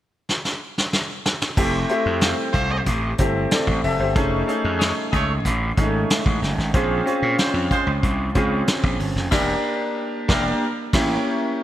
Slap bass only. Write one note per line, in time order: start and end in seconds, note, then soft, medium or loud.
1.57 1.84 F1 medium
2.06 2.32 F2 medium
2.54 2.81 C2 medium
2.86 3.13 A1 medium
3.19 3.45 G1 medium
3.67 3.80 A1 medium
3.84 3.97 F1 medium
3.99 4.15 G1 medium
4.15 4.42 F1 medium
4.64 4.91 F2 medium
5.13 5.39 C#2 medium
5.45 5.71 A1 medium
5.77 6.04 G#1 medium
6.26 6.39 A1 medium
6.42 6.55 F#1 medium
6.58 6.71 G#1 medium
6.74 7.00 A#1 loud
7.22 7.36 A#2 medium
7.54 7.67 F2 medium
7.87 8.00 C#2 medium
8.04 8.30 C2 medium
8.36 8.62 C#2 medium
8.84 8.97 A#1 medium
8.99 9.13 G1 medium
9.15 9.31 F1 medium
9.32 9.54 E1 loud
10.29 10.51 E1 medium
10.93 11.16 A1 loud